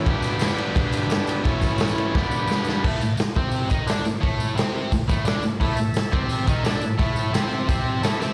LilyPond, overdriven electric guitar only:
\new Staff \with { instrumentName = "Overdriven electric guitar" } { \clef bass \time 4/4 \key g \lydian \tempo 4 = 173 <g, d g b d'>1 | <a, e a cis' e'>2 <g, d g b d'>2 | <a, a>8 a,8 r8 <c c'>4 <dis dis'>8 <d d'>8 a,8 | <a, a>4 <c c'>4 a,8 <a, a>8 <d d'>8 a,8 |
<a, a>8 a,8 r8 <c c'>4 <dis dis'>8 <d d'>8 a,8 | <a, a>4 <c c'>4 <c c'>4 <a, a>8 <c c'>8 | }